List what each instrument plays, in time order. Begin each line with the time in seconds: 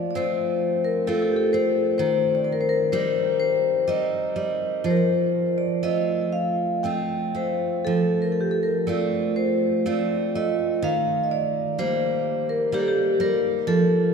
Already playing: steel-string acoustic guitar F3 A3
0.11 vibraphone D5
0.15 steel-string acoustic guitar A3 C4 F4, vibraphone C5
0.85 vibraphone A#4
1.07 steel-string acoustic guitar A3 C4 F4, vibraphone A4
1.19 vibraphone A4 A#4
1.32 vibraphone G4
1.36 vibraphone A4
1.53 steel-string acoustic guitar C4, vibraphone C5
1.98 steel-string acoustic guitar D#3, vibraphone C5
2.35 vibraphone D5
2.45 vibraphone C5
2.53 vibraphone A#4
2.61 vibraphone C5
2.69 vibraphone A#4
2.92 steel-string acoustic guitar G3 C4 D#4, vibraphone C5
3.40 vibraphone C5
3.88 steel-string acoustic guitar G3 C4 D#4, vibraphone D#5
4.36 steel-string acoustic guitar G3, vibraphone D#5
4.84 steel-string acoustic guitar F3, vibraphone C5
4.90 vibraphone A#4
4.97 vibraphone C5
5.58 vibraphone D5
5.83 steel-string acoustic guitar A3 C4 F4, vibraphone D#5
6.33 vibraphone F5
6.83 steel-string acoustic guitar A3 C4 F4, vibraphone G5
7.35 steel-string acoustic guitar A3, vibraphone C5
7.85 steel-string acoustic guitar F3, vibraphone A4
8.22 vibraphone A#4
8.32 vibraphone A4
8.41 vibraphone G4
8.51 vibraphone A4
8.63 vibraphone A#4
8.87 steel-string acoustic guitar A3 C4 F4, vibraphone D5
9.36 vibraphone C5
9.86 steel-string acoustic guitar A3 C4 F4, vibraphone D5
10.35 steel-string acoustic guitar A3, vibraphone D#5
10.82 steel-string acoustic guitar D#3, vibraphone F5
11.24 vibraphone D#5
11.31 vibraphone D5
11.79 steel-string acoustic guitar G3 A#3 D#4, vibraphone C5
12.49 vibraphone A#4
12.72 steel-string acoustic guitar G3 A#3 D#4, vibraphone G4
12.79 vibraphone A4
12.88 vibraphone G4
13.20 steel-string acoustic guitar G3, vibraphone A#4
13.67 steel-string acoustic guitar F3, vibraphone A4